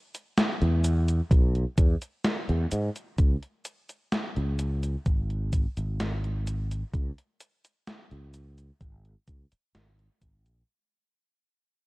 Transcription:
0.15 closed hi-hat, cabasa
0.38 snare, closed hi-hat, cabasa
0.62 E2, closed hi-hat
0.84 closed hi-hat, cabasa
1.08 closed hi-hat, cabasa
1.31 B1, kick, closed hi-hat, cabasa
1.55 closed hi-hat
1.78 E2, kick, closed hi-hat, cabasa
2.02 closed hi-hat, cabasa
2.24 snare, closed hi-hat, cabasa
2.49 E2, closed hi-hat
2.71 G#2, closed hi-hat, cabasa
2.96 closed hi-hat, cabasa
3.18 C#2, kick, closed hi-hat, cabasa
3.43 closed hi-hat
3.65 closed hi-hat, cabasa
3.89 closed hi-hat, cabasa
4.12 snare, closed hi-hat, cabasa
4.36 C#2, closed hi-hat
4.59 closed hi-hat, cabasa
4.83 closed hi-hat, cabasa
5.06 G#1, kick, closed hi-hat, cabasa
5.30 closed hi-hat
5.53 kick, closed hi-hat, cabasa
5.77 G#1, closed hi-hat, cabasa
6.00 snare, closed hi-hat, cabasa
6.24 closed hi-hat
6.47 closed hi-hat, cabasa
6.71 closed hi-hat, cabasa
6.93 C#2, kick, closed hi-hat, cabasa
7.18 closed hi-hat
7.40 closed hi-hat, cabasa
7.65 closed hi-hat, cabasa
7.87 snare, closed hi-hat, cabasa
8.11 C#2, closed hi-hat
8.34 closed hi-hat, cabasa
8.58 closed hi-hat, cabasa
8.81 G#1, kick, closed hi-hat, cabasa
9.05 closed hi-hat
9.28 C#2, kick, closed hi-hat, cabasa
9.52 muted fretless electric bass stroke, closed hi-hat, cabasa
9.75 G#1, snare, closed hi-hat, cabasa
9.99 closed hi-hat
10.21 G#1, kick, closed hi-hat, cabasa
10.46 A#1, closed hi-hat, cabasa

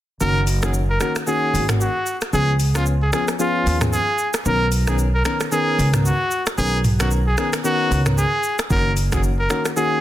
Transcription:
0.21 F#1 D#3 A#3 C#4 F#4 A#4, shaker
0.47 open hi-hat, shaker
0.63 D#3 A#3 C#4 F#4 G#4, finger snap, cross-stick, shaker
0.74 shaker
0.90 A#4
1.00 D#3 A#3 C#4 F#4 A#4, finger snap, cross-stick, shaker
1.16 finger snap, cross-stick, shaker
1.27 D#3 A#3 C#4 F#4 G#4, shaker
1.54 G#1, open hi-hat, shaker
1.69 D#3 A#3 C#4 F#4, finger snap, cross-stick, mid tom, shaker
1.81 F#4, shaker
2.06 shaker
2.21 finger snap, cross-stick, shaker
2.33 C#2 F3 B3 C#4 G#4, shaker
2.60 open hi-hat, shaker
2.75 F3 B3 C#4 F4 G#4, finger snap, cross-stick, shaker
2.86 shaker
3.02 G#4
3.13 F3 B3 C#4 G#4, finger snap, cross-stick, shaker
3.28 finger snap, cross-stick, shaker
3.39 F3 B3 C#4 F4 G#4, shaker
3.66 D#2, open hi-hat, shaker
3.81 F3 B3 C#4 G#4, finger snap, cross-stick, mid tom, shaker
3.93 G#4, shaker
4.18 shaker
4.34 finger snap, cross-stick, shaker
4.45 B1 D#3 B3 C#4 A#4, shaker
4.72 open hi-hat, shaker
4.87 D#3 B3 C#4 G#4 A#4, finger snap, cross-stick, shaker
4.98 shaker
5.14 A#4
5.25 D#3 B3 C#4 A#4, finger snap, cross-stick, shaker
5.40 finger snap, cross-stick, shaker
5.52 D#3 B3 C#4 G#4 A#4, shaker
5.78 C#2, open hi-hat, shaker
5.93 D#3 B3 C#4 A#4, finger snap, cross-stick, mid tom, shaker
6.05 F#4, shaker
6.31 shaker
6.46 finger snap, cross-stick, shaker
6.58 B1 D#3 B3 C#4 G#4 A#4, shaker
6.84 mid tom, open hi-hat, shaker
7.00 D#3 B3 C#4 F#4 A#4, finger snap, cross-stick, shaker
7.11 shaker
7.27 G#4
7.38 D#3 B3 C#4 G#4 A#4, finger snap, cross-stick, shaker
7.53 finger snap, cross-stick, shaker
7.64 D#3 B3 C#4 F#4 A#4, shaker
7.91 C#2, open hi-hat, shaker
8.06 D#3 B3 C#4 A#4, finger snap, cross-stick, mid tom, shaker
8.18 G#4, shaker
8.43 shaker
8.59 finger snap, cross-stick, shaker
8.70 F#1 D#3 A#3 C#4 F#4 A#4, kick, shaker
8.97 open hi-hat, shaker
9.12 D#3 A#3 C#4 F#4 G#4, finger snap, kick, cross-stick, shaker
9.23 shaker
9.39 A#4
9.50 D#3 A#3 C#4 F#4 A#4, finger snap, cross-stick, shaker
9.65 finger snap, cross-stick, shaker
9.76 D#3 A#3 C#4 F#4 G#4, shaker

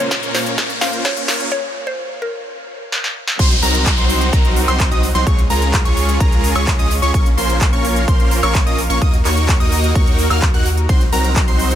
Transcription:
Already playing: A#2 A#3 C#4 F4 A#4 C5, riser
0.00 C#5
0.11 kick, snare, closed hi-hat
0.23 A#3 C#4 F4 A#4 C#5, closed hi-hat
0.35 C5, snare, open hi-hat
0.46 closed hi-hat
0.58 A#3 C#4 F4 A#4 C#5, kick, snare, closed hi-hat
0.70 closed hi-hat
0.81 A#3 C#4 F4 A#4 C5 F5, snare, open hi-hat
0.93 closed hi-hat
1.05 C#5, kick, snare, closed hi-hat
1.17 A#3 C#4 F4 A#4 C#5, closed hi-hat
1.28 snare, open hi-hat
1.40 closed hi-hat
1.52 C#5
1.87 C5
2.22 A#4
2.92 snare
3.04 snare
3.28 snare
3.39 C2 F#3 C4 D#4 F#4 C5 D#5 F#5 C6, kick, closed hi-hat, crash, downlifter
3.51 closed hi-hat
3.63 C2 F#3 C4 D#4 F#4 A#4 A#5, open hi-hat
3.74 closed hi-hat
3.86 kick, clap, closed hi-hat
3.98 C2 F#3 C4 D#4 F#4 C5 C6, closed hi-hat
4.09 open hi-hat
4.21 closed hi-hat
4.33 C2 F#3 C4 D#4 F#4 A#4 A#5, kick, closed hi-hat
4.45 closed hi-hat
4.56 open hi-hat
4.68 C2 F#3 C4 D#4 F#4 C5 C6, closed hi-hat, high woodblock
4.80 kick, clap, closed hi-hat
4.91 C2 F#3 C4 D#4 F#4 D#5 D#6, closed hi-hat
5.03 open hi-hat
5.15 C2 F#3 C4 D#4 F#4 C5 C6, closed hi-hat
5.27 C#2 G#3 C#4 F4 G#4 C#5 C#6, kick, closed hi-hat
5.38 closed hi-hat
5.50 C#2 G#3 C#4 F4 G#4 A#4 A#5, open hi-hat
5.62 closed hi-hat
5.74 kick, clap, closed hi-hat
5.85 C#2 G#3 C#4 F4 G#4 C#5 C#6, closed hi-hat
5.97 open hi-hat
6.09 closed hi-hat
6.20 C#2 G#3 C#4 F4 G#4 A#4 A#5, kick, closed hi-hat
6.32 closed hi-hat
6.44 open hi-hat
6.55 C#2 G#3 C#4 F4 G#4 C#5 C#6, closed hi-hat, high woodblock
6.67 kick, clap, closed hi-hat
6.79 C#2 G#3 C#4 F4 G#4 D#5 D#6, closed hi-hat
6.91 open hi-hat
7.02 C#2 G#3 C#4 F4 G#4 C#5 C#6, closed hi-hat
7.14 A#1 A#3 C#4 F4 A#4 C#5 F5 C#6, kick, closed hi-hat
7.26 closed hi-hat
7.37 A#1 A#3 C#4 F4 A#4 C5 C6, open hi-hat
7.49 closed hi-hat
7.61 kick, clap, closed hi-hat
7.73 A#1 A#3 C#4 F4 A#4 C#5 C#6, closed hi-hat
7.85 open hi-hat
7.96 closed hi-hat
8.08 A#1 A#3 C#4 F4 A#4 C5 C6, kick, closed hi-hat
8.20 closed hi-hat
8.31 open hi-hat
8.43 A#1 A#3 C#4 F4 A#4 C#5 C#6, closed hi-hat, high woodblock
8.55 kick, clap, closed hi-hat
8.66 A#1 A#3 C#4 F4 A#4 D#5 D#6, closed hi-hat
8.78 open hi-hat
8.90 A#1 A#3 C#4 F4 A#4 C#5 C#6, closed hi-hat
9.02 D#2 A#3 D#4 F#4 A#4 D#5 D#6, kick, closed hi-hat
9.13 closed hi-hat
9.25 D#2 A#3 D#4 F#4 A#4 C#5 C#6, clap, open hi-hat
9.37 closed hi-hat
9.49 kick, clap, closed hi-hat
9.60 D#2 A#3 D#4 F#4 A#4 D#5 D#6, closed hi-hat
9.72 open hi-hat
9.84 closed hi-hat
9.95 D#2 A#3 D#4 F#4 A#4 C#5 C#6, kick, closed hi-hat
10.07 closed hi-hat
10.19 open hi-hat
10.30 D#2 A#3 D#4 F#4 A#4 F5 F6, closed hi-hat, high woodblock
10.42 kick, clap, closed hi-hat
10.54 D#2 A#3 D#4 F#4 A#4 F#5 F#6, closed hi-hat
10.66 open hi-hat
10.77 closed hi-hat
10.89 C2 F#3 C4 D#4 F#4 C5 D#5 F#5 C6, kick, closed hi-hat
11.01 closed hi-hat
11.13 C2 F#3 C4 D#4 F#4 A#4 A#5, open hi-hat
11.24 closed hi-hat
11.36 kick, clap, closed hi-hat
11.48 C2 F#3 C4 D#4 F#4 C5 C6, closed hi-hat
11.59 open hi-hat
11.71 closed hi-hat

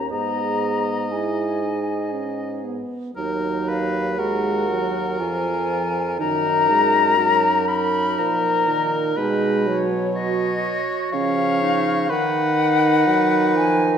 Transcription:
Already playing: D#2 C#4 G4 A#5
0.11 G#2 B3 G#4 D#5 A#5
1.12 E4 G#4 G#5
1.62 D#4
2.13 C#4
2.64 B3
3.15 D#2 F#3 D#4 A#4
3.68 B4 F5
4.18 G#3 F#4 A#4 F#5
4.69 F#3
5.19 F2 F3 F4 G#5
6.18 F#2 D#3 D#4 A#4 A#5
6.69 G#3
7.18 F#3 D#4 A#4
7.68 A#4 B5
8.18 A#2 F3 A#5
8.68 D#3
9.17 B2 G#3 D#4 B4
9.66 F#3 C#5
10.14 F#4 C#5 D#5
11.12 C#3 F3 C#4 C#5 F5
11.62 D#4
12.10 D#3 D#4 B4 F#5
13.07 F#3
13.54 F3 G#5

